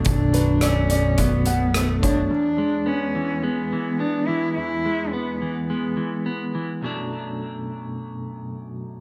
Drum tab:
HH |xxxxxxxx|--------|--------|--------|
SD |--r---r-|--------|--------|--------|
BD |o---o--o|--------|--------|--------|